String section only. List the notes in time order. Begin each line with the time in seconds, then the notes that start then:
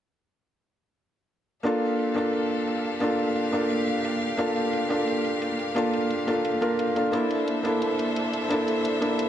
1.65 A#3 G4 A4 F5
7.13 D4 A4 C5 E5